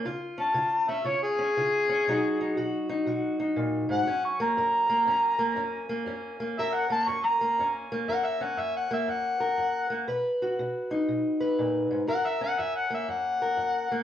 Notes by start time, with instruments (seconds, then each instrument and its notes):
0.05 steel-string acoustic guitar C#3 F4
0.38 steel-string acoustic guitar C#4, harmonica A5
0.54 steel-string acoustic guitar C#3 F4
0.89 steel-string acoustic guitar C#4, harmonica E5
1.04 steel-string acoustic guitar C#3 F4, harmonica C#5
1.23 harmonica G#4
1.39 steel-string acoustic guitar C#4
1.57 steel-string acoustic guitar C#3 F4
1.89 steel-string acoustic guitar C#4
2.08 steel-string acoustic guitar B2 F#3 D#4 F#4
2.41 steel-string acoustic guitar D#4
2.57 steel-string acoustic guitar B2 F#4
2.89 steel-string acoustic guitar D#4
3.06 steel-string acoustic guitar B2 F#4
3.40 steel-string acoustic guitar D#4
3.56 steel-string acoustic guitar A#2
3.89 steel-string acoustic guitar G#2, harmonica F#5
4.06 steel-string acoustic guitar F#2 C#4
4.25 harmonica C#6
4.40 steel-string acoustic guitar A#3, harmonica A#5
4.57 steel-string acoustic guitar F#2 A#4
4.89 steel-string acoustic guitar A#3
5.06 steel-string acoustic guitar F#2 C#4
5.39 steel-string acoustic guitar A#3
5.56 steel-string acoustic guitar F#2 C#4
5.89 steel-string acoustic guitar A#3
6.06 steel-string acoustic guitar F#2 C#4
6.40 steel-string acoustic guitar A#3
6.58 steel-string acoustic guitar F#2 A#4, harmonica E5
6.74 harmonica F#5
6.90 steel-string acoustic guitar A#3, harmonica A5
7.08 steel-string acoustic guitar F#2 C#4, harmonica C#6
7.25 harmonica A#5
7.41 steel-string acoustic guitar A#3
7.59 steel-string acoustic guitar F#2 C#4
7.92 steel-string acoustic guitar A#3
8.08 steel-string acoustic guitar F#2 A#4, harmonica F#5
8.25 harmonica E5
8.41 steel-string acoustic guitar C#4, harmonica F#5
8.57 steel-string acoustic guitar F#2, harmonica E5
8.76 harmonica F#5
8.91 steel-string acoustic guitar A#3, harmonica E5
9.08 steel-string acoustic guitar F#2, harmonica F#5
9.40 steel-string acoustic guitar A#4
9.58 steel-string acoustic guitar F#2
9.90 steel-string acoustic guitar A#3
10.07 steel-string acoustic guitar B2 B4
10.42 steel-string acoustic guitar F#4
10.59 steel-string acoustic guitar B2
10.91 steel-string acoustic guitar D#4
11.08 steel-string acoustic guitar B2
11.40 steel-string acoustic guitar B4
11.59 steel-string acoustic guitar A#2
11.91 steel-string acoustic guitar G#2
12.07 steel-string acoustic guitar F#2 A#4, harmonica F#5
12.26 harmonica E5
12.41 steel-string acoustic guitar C#4, harmonica F#5
12.59 steel-string acoustic guitar F#2, harmonica E5
12.76 harmonica F#5
12.90 steel-string acoustic guitar A#3, harmonica E5
13.08 steel-string acoustic guitar F#2, harmonica F#5
13.42 steel-string acoustic guitar A#4
13.57 steel-string acoustic guitar F#2
13.91 steel-string acoustic guitar A#3